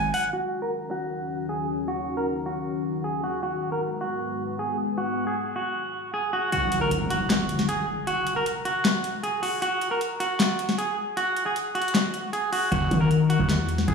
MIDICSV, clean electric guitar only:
0, 0, Header, 1, 2, 480
1, 0, Start_track
1, 0, Key_signature, -6, "minor"
1, 0, Tempo, 387097
1, 412, Time_signature, 4, 2, 24, 8
1, 17293, End_track
2, 0, Start_track
2, 0, Title_t, "Clean electric guitar"
2, 0, Program_c, 0, 27
2, 0, Note_on_c, 0, 80, 77
2, 137, Note_off_c, 0, 80, 0
2, 173, Note_on_c, 0, 78, 92
2, 377, Note_off_c, 0, 78, 0
2, 412, Note_on_c, 0, 66, 99
2, 750, Note_off_c, 0, 66, 0
2, 770, Note_on_c, 0, 70, 82
2, 873, Note_off_c, 0, 70, 0
2, 1129, Note_on_c, 0, 66, 82
2, 1807, Note_off_c, 0, 66, 0
2, 1849, Note_on_c, 0, 68, 69
2, 2056, Note_off_c, 0, 68, 0
2, 2331, Note_on_c, 0, 66, 99
2, 2670, Note_off_c, 0, 66, 0
2, 2692, Note_on_c, 0, 70, 79
2, 2794, Note_off_c, 0, 70, 0
2, 3050, Note_on_c, 0, 66, 73
2, 3727, Note_off_c, 0, 66, 0
2, 3772, Note_on_c, 0, 68, 68
2, 3977, Note_off_c, 0, 68, 0
2, 4013, Note_on_c, 0, 66, 75
2, 4217, Note_off_c, 0, 66, 0
2, 4253, Note_on_c, 0, 66, 107
2, 4590, Note_off_c, 0, 66, 0
2, 4613, Note_on_c, 0, 70, 78
2, 4715, Note_off_c, 0, 70, 0
2, 4972, Note_on_c, 0, 66, 84
2, 5648, Note_off_c, 0, 66, 0
2, 5693, Note_on_c, 0, 68, 74
2, 5898, Note_off_c, 0, 68, 0
2, 6171, Note_on_c, 0, 66, 103
2, 6510, Note_off_c, 0, 66, 0
2, 6532, Note_on_c, 0, 68, 77
2, 6634, Note_off_c, 0, 68, 0
2, 6892, Note_on_c, 0, 66, 72
2, 7568, Note_off_c, 0, 66, 0
2, 7610, Note_on_c, 0, 68, 74
2, 7816, Note_off_c, 0, 68, 0
2, 7850, Note_on_c, 0, 66, 87
2, 8056, Note_off_c, 0, 66, 0
2, 8090, Note_on_c, 0, 66, 105
2, 8429, Note_off_c, 0, 66, 0
2, 8448, Note_on_c, 0, 70, 82
2, 8552, Note_off_c, 0, 70, 0
2, 8810, Note_on_c, 0, 66, 84
2, 9487, Note_off_c, 0, 66, 0
2, 9532, Note_on_c, 0, 68, 75
2, 9737, Note_off_c, 0, 68, 0
2, 10009, Note_on_c, 0, 66, 105
2, 10349, Note_off_c, 0, 66, 0
2, 10370, Note_on_c, 0, 70, 79
2, 10473, Note_off_c, 0, 70, 0
2, 10729, Note_on_c, 0, 66, 73
2, 11407, Note_off_c, 0, 66, 0
2, 11451, Note_on_c, 0, 68, 69
2, 11656, Note_off_c, 0, 68, 0
2, 11688, Note_on_c, 0, 66, 77
2, 11895, Note_off_c, 0, 66, 0
2, 11929, Note_on_c, 0, 66, 111
2, 12269, Note_off_c, 0, 66, 0
2, 12290, Note_on_c, 0, 70, 78
2, 12393, Note_off_c, 0, 70, 0
2, 12649, Note_on_c, 0, 66, 82
2, 13327, Note_off_c, 0, 66, 0
2, 13371, Note_on_c, 0, 68, 74
2, 13577, Note_off_c, 0, 68, 0
2, 13851, Note_on_c, 0, 66, 105
2, 14189, Note_off_c, 0, 66, 0
2, 14210, Note_on_c, 0, 68, 78
2, 14313, Note_off_c, 0, 68, 0
2, 14569, Note_on_c, 0, 66, 78
2, 15247, Note_off_c, 0, 66, 0
2, 15290, Note_on_c, 0, 68, 75
2, 15496, Note_off_c, 0, 68, 0
2, 15531, Note_on_c, 0, 66, 90
2, 15737, Note_off_c, 0, 66, 0
2, 15768, Note_on_c, 0, 66, 100
2, 16108, Note_off_c, 0, 66, 0
2, 16128, Note_on_c, 0, 70, 82
2, 16232, Note_off_c, 0, 70, 0
2, 16487, Note_on_c, 0, 66, 84
2, 17166, Note_off_c, 0, 66, 0
2, 17210, Note_on_c, 0, 68, 71
2, 17293, Note_off_c, 0, 68, 0
2, 17293, End_track
0, 0, End_of_file